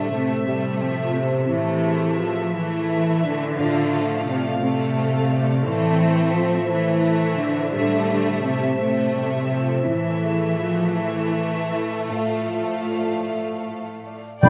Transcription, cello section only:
Already playing: D3
0.12 C3
0.46 C3
1.48 E3
2.19 F3
2.54 E3
3.23 D3
4.27 C3
4.61 C3
5.64 E3
6.34 F3
6.69 E3
7.39 D3
8.44 C3
8.79 C3
9.86 E3
10.60 F3
10.97 E3
11.72 E3
12.11 A2
14.43 D4

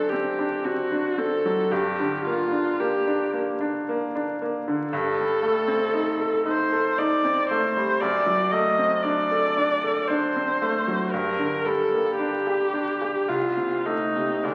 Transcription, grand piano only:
Already playing: F#2 F#3 C4 D4
0.13 C4
0.39 D4
0.65 C4
0.92 D4
1.18 C4
1.45 F#3
1.72 G2
2.00 D3
2.27 A#3
2.52 D4
2.80 A#3
3.07 D4
3.33 A#3
3.61 D4
3.89 A#3
4.15 D4
4.42 A#3
4.68 D3
4.93 G2
5.19 G3
5.43 A3
5.68 C4
5.94 D#4
6.20 A4
6.46 D#4
6.72 A4
6.98 D#4
7.24 C4
7.51 A3
7.77 G3
8.02 F#2
8.26 F#3
8.52 A3
8.79 C4
9.04 D4
9.31 A4
9.57 D4
9.84 A4
10.10 D4
10.36 C4
10.62 A3
10.88 F#3
11.14 G2
11.39 D3
11.66 G3
11.92 A#3
12.19 D4
12.47 G4
12.73 D4
13.01 G4
13.29 C2
13.57 C3
13.86 A3
14.16 C3
14.44 D2

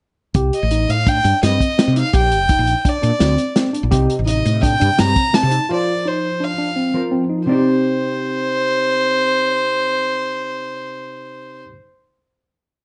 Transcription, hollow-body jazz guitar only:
3.92 C3 C4 D#4 D#5
5.70 F3 F4 A#4 C5
6.94 F3 F4 A#4 C5
7.46 C3 C4 D#4 D5

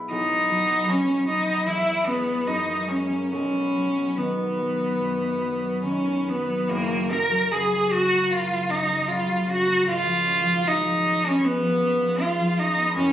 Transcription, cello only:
0.12 D#4
0.89 C#4
1.28 D#4
1.67 E4
2.06 B3
2.47 D#4
2.88 C#4
3.31 C#4
4.17 B3
5.84 C#4
6.29 B3
6.69 A#3
7.12 A#4
7.52 G#4
7.91 F#4
8.30 F4
8.70 D#4
9.08 F4
9.50 F#4
9.88 F4
10.67 D#4
11.27 C#4
11.45 B3
12.21 F4
12.59 D#4
12.95 C#4

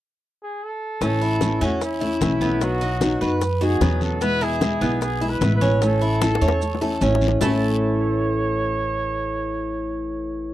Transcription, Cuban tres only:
1.01 C#4
1.21 E4
1.61 C#4
2.01 E4
2.41 B3
2.81 D#4
3.01 F#4
3.21 B4
3.61 F#4
3.81 B3
4.21 B3
4.41 E4
4.81 B3
5.21 E4
5.61 C#4
6.01 E4
6.22 A4
6.42 C#5
6.82 A4
7.01 C#4
7.41 A3 E4 A4

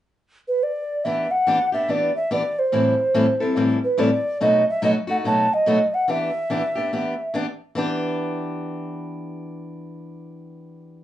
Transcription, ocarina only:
0.48 B4
0.63 D5
1.04 E5
1.31 F#5
1.73 E5
1.90 D5
2.16 E5
2.33 D5
2.59 C5
3.84 B4
4.00 D5
4.42 D#5
4.70 E5
4.84 D#5
5.10 F#5
5.27 A5
5.54 D#5
5.94 F#5
6.11 E5

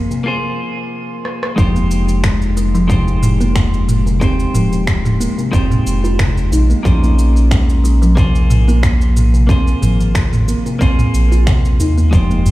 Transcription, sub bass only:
1.58 F1
4.55 D#1
5.53 F1
5.86 F1
6.52 A#1
6.85 A#1
9.82 G#1
10.81 A#1
11.14 A#1
11.80 D#2
12.13 F1

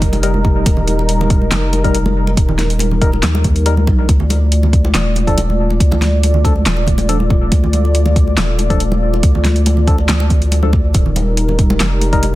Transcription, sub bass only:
Already playing: F1
0.66 D#1
1.52 F1
2.37 D#1
3.23 D#2
4.09 D2
4.95 D#1
5.80 D2
6.66 D#1
7.52 D2
8.37 D#1
9.23 D2
10.09 D2
10.95 D#1
11.80 F1

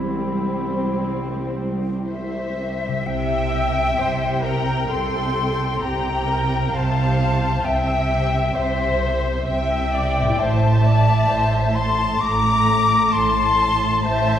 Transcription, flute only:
2.10 E5
3.07 G5
4.44 A#5
4.90 C6
5.82 A#5
6.74 A5
7.65 G5
8.56 E5
9.47 G5
10.39 A5
11.75 C6
12.21 D6
13.13 C6
14.03 A5

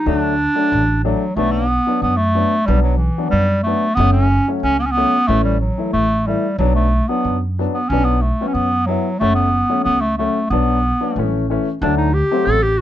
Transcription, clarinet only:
0.08 D4
1.04 F#3
1.36 A3
1.51 B3
2.02 B3
2.17 A3
2.66 G3
2.82 F#3
2.97 E3
3.30 G3
3.63 A3
3.95 B3
4.12 C#4
4.62 C#4
4.79 B3
4.86 C#4
4.92 B3
5.27 A3
5.44 G3
5.60 F#3
5.93 A3
6.27 G3
6.58 F#3
6.75 A3
7.08 B3
7.74 B3
7.89 C#4
8.05 B3
8.21 A3
8.48 C#4
8.54 B3
8.86 F#3
9.19 A3
9.35 B3
9.84 B3
10.01 A3
10.17 A3
10.50 B3
11.81 D4
11.97 D#4
12.14 G4
12.45 A4
12.62 G4
12.78 F#4

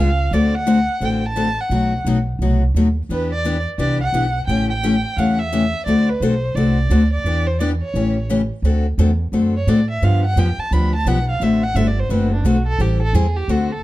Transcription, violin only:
0.00 F5
0.34 D5
0.56 F#5
1.05 G5
1.26 A5
1.61 F#5
3.12 B4
3.32 D5
3.79 D5
4.00 F#5
4.47 G5
4.70 G5
5.16 F5 F#5
5.39 E5
5.87 D5
6.09 B4
6.22 C5
6.56 D5
7.13 D5
7.47 C5
7.60 D5
7.82 C#5
9.57 C#5
9.69 D5
9.91 E5
10.05 F5
10.25 F#5
10.39 G5
10.60 A5
10.73 B5
10.96 A5
11.08 F#5
11.30 F5
11.43 E5
11.64 F#5
11.76 E5
11.87 D5
12.00 C5
12.11 B4
12.34 D4
12.47 F#4
12.67 A4
12.81 G4
13.02 A4
13.15 G#4
13.37 G4
13.51 F#4
13.72 A4

